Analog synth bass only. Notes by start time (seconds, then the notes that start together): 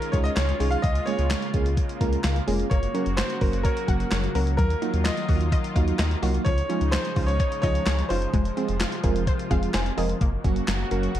0.13 C#2
0.37 C#2
0.60 C2
0.84 C#2
1.19 C#2
1.54 C#2
2.01 C#2
2.24 C#2
2.48 F1
2.71 F#1
3.06 F#1
3.41 F#1
3.88 F#1
4.12 F#1
4.35 C#2
4.59 D#2
4.94 D#2
5.29 D#2
5.76 D#2
5.99 D#2
6.23 C2
6.46 C#2
6.81 C#2
7.16 C#2
7.63 C#2
7.87 C#2
8.10 F#1
8.34 F1
8.69 F1
9.04 F1
9.51 F1
9.74 F1
9.98 F1
10.21 F#1
10.44 F#1
10.68 F#1
10.91 F#1
11.15 F#1